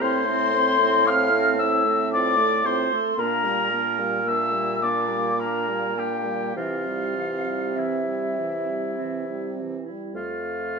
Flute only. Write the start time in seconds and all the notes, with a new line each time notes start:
0.01 C6
1.07 F6
1.58 E6
2.12 D6
2.65 C6
3.19 A#5
4.25 E6
4.82 D6
5.39 A#5
5.97 G5
6.56 F5
7.75 E5
10.15 F5